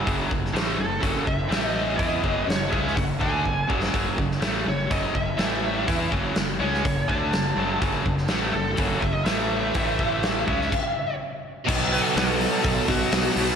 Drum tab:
CC |----------------|----------------|----------------|----------------|
HH |o---o---o---o---|o---o---o-------|o---o---o---o---|o---o---o---o---|
SD |---oo-------o---|----o--o-------o|---oo-------o---|----o--o----o---|
BD |o-o-----o-o-----|o-o---o-o-o-o-o-|o-o-----o-o-----|o-o-----o-o-----|

CC |----------------|--------x-------|x---------------|
HH |o---o---o---o---|o---o-----------|--o-o-o-o-o-o-o-|
SD |---oo-------o---|----o--o--------|----o-------o---|
BD |o-o-----o-o-----|o-o---o-o-------|o-------o-o-----|